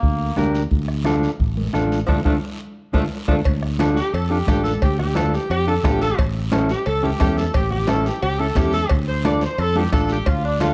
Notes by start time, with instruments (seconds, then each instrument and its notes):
Already playing: saxophone section A#3
0.02 fingered electric bass D2, bombo low, high conga, long guiro
0.36 fingered electric bass D2, clean electric guitar D4 G4 A#4, bombo rim, high conga, short guiro
0.55 short guiro
0.71 fingered electric bass D2, bombo low, high conga, long guiro
0.88 bombo rim
1.05 clean electric guitar D4 F4 A4, bombo rim, high conga, short guiro
1.23 short guiro
1.40 fingered electric bass A1, bombo low, high conga, long guiro
1.57 high conga
1.73 fingered electric bass A1, clean electric guitar D4 F4 A4, bombo rim, high conga, short guiro
1.92 short guiro
2.07 fingered electric bass D2, saxophone section F3 A3 D4, clean electric guitar D4 F4 A4, bombo low, high conga, long guiro
2.25 fingered electric bass D2, saxophone section F3 A3 D4, clean electric guitar D4 F4 A4, bombo low, high conga, long guiro
2.93 fingered electric bass D2, saxophone section F3 A3 D4, clean electric guitar D4 F4 A4, bombo low, high conga, long guiro
3.27 fingered electric bass D2, saxophone section F3 A3 D4, clean electric guitar D4 F4 A4, bombo low, high conga, long guiro
3.45 fingered electric bass D2, bombo low, cowbell, high conga, long guiro
3.63 bombo rim, high conga
3.79 clean electric guitar D4 F4 A4, bombo rim, cowbell, high conga, short guiro
3.96 saxophone section G4, short guiro
4.13 fingered electric bass F2, saxophone section A4, cowbell, long guiro
4.30 clean electric guitar D4 F4 A4, saxophone section G4
4.47 fingered electric bass A1, clean electric guitar D4 F4 A4, saxophone section G4, bombo low, bombo rim, cowbell, high conga, short guiro
4.64 saxophone section A4, high conga, short guiro
4.82 fingered electric bass D2, saxophone section G4, bombo low, cowbell, high conga, long guiro
4.99 saxophone section G4, bombo rim, high conga, low conga
5.15 clean electric guitar D4 F4 A4, saxophone section A4, bombo rim, cowbell, high conga, short guiro
5.34 saxophone section G4, short guiro
5.50 fingered electric bass F2, saxophone section G4, cowbell, long guiro
5.67 clean electric guitar D4 F4 A4, saxophone section A4
5.84 fingered electric bass A1, clean electric guitar D4 F4 A4, saxophone section G4, bombo low, bombo rim, cowbell, high conga, low conga, low timbale, short guiro
6.02 saxophone section A4, short guiro
6.18 fingered electric bass A1, bombo low, cowbell, high conga, long guiro
6.35 high conga
6.52 clean electric guitar C#4 E4 A4, bombo rim, cowbell, high conga, short guiro
6.69 saxophone section G4, short guiro
6.86 fingered electric bass C#2, saxophone section A4, cowbell, long guiro
7.03 clean electric guitar C#4 E4 A4, saxophone section G4, high conga
7.19 fingered electric bass E2, clean electric guitar C#4 E4 A4, saxophone section G4, bombo low, bombo rim, cowbell, high conga, low timbale, short guiro
7.38 saxophone section A4, high conga, short guiro
7.54 fingered electric bass A1, saxophone section G4, bombo low, cowbell, high conga, long guiro
7.70 saxophone section G4, high conga, low conga
7.87 clean electric guitar C#4 E4 A4, saxophone section A4, bombo rim, cowbell, high conga, short guiro
8.06 saxophone section G4, short guiro
8.22 fingered electric bass C#2, saxophone section G4, cowbell, long guiro
8.39 clean electric guitar C#4 E4 A4, saxophone section A4
8.55 fingered electric bass E2, clean electric guitar C#4 E4 A4, saxophone section G4, bombo low, bombo rim, cowbell, high conga, low conga, short guiro
8.73 saxophone section A4, short guiro
8.89 fingered electric bass D2, bombo low, cowbell, long guiro
9.07 saxophone section C5, high conga
9.24 clean electric guitar D4 F4 A4, saxophone section D5, bombo rim, cowbell, high conga, short guiro
9.41 saxophone section C5, short guiro
9.58 fingered electric bass F2, saxophone section A4, cowbell, long guiro
9.76 clean electric guitar D4 F4 A4, saxophone section G4, high conga
9.92 fingered electric bass A1, clean electric guitar D4 F4 A4, saxophone section A4, bombo low, bombo rim, cowbell, high conga, short guiro
10.09 saxophone section G4, short guiro
10.26 fingered electric bass D2, saxophone section F4, bombo low, cowbell, high conga, long guiro
10.44 saxophone section D4
10.60 clean electric guitar D4 F4 A4, saxophone section F4, bombo rim, cowbell, high conga, short guiro